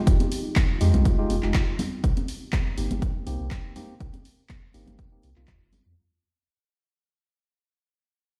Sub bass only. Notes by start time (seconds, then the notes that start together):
0.07 F1
0.81 F2
0.94 C2
1.30 F1
1.43 F1
2.04 C2
2.78 G1
2.91 G1
3.27 C2
3.40 C2
4.00 C2
4.74 G1
4.87 G1
5.23 C2
5.37 C2
5.48 D#2
5.61 G1
5.86 F2